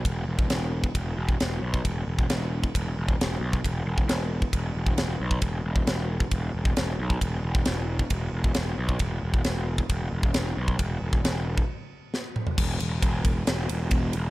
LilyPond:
<<
  \new Staff \with { instrumentName = "Picked electric bass" } { \clef bass \time 4/4 \key c \lydian \tempo 4 = 134 e,,8 e,,8 e,,4 e,,8 e,,8 e,,8 b,,8 | e,,8 e,,8 e,,4 e,,8 e,,8 e,,8 b,,8 | e,,8 e,,8 e,,4 e,,8 e,,8 e,,8 b,,8 | e,,8 e,,8 e,,4 e,,8 e,,8 e,,8 b,,8 |
e,,8 e,,8 e,,4 e,,8 e,,8 e,,8 b,,8 | e,,8 e,,8 e,,4 e,,8 e,,8 e,,8 b,,8 | e,,8 e,,8 e,,4 r2 | e,,8 e,,8 e,,4 e,,8 e,,8 e,,8 e,,8 | }
  \new DrumStaff \with { instrumentName = "Drums" } \drummode { \time 4/4 <bd rb>8. bd16 <rb sn>8. bd16 <bd rb>8. bd16 <rb sn>8. bd16 | <bd rb>8. bd16 <rb sn>8. bd16 <bd rb>8. bd16 <rb sn>8. bd16 | <bd rb>8. bd16 <rb sn>8. bd16 <bd rb>8. bd16 <rb sn>8. bd16 | <bd rb>8. bd16 <rb sn>8. bd16 <bd rb>8. bd16 <rb sn>8. bd16 |
<bd rb>8. bd16 <rb sn>8. bd16 <bd rb>8. bd16 <rb sn>8. bd16 | <bd rb>8. bd16 <rb sn>8. bd16 <bd rb>8. bd16 <rb sn>8. bd16 | <bd rb>8. bd16 <rb sn>8. bd16 r4 sn8 toml16 tomfh16 | <cymc bd>8 cymr8 <bd cymr>8 <bd cymr>8 <cymr sn>8 cymr8 <bd cymr>8 cymr8 | }
>>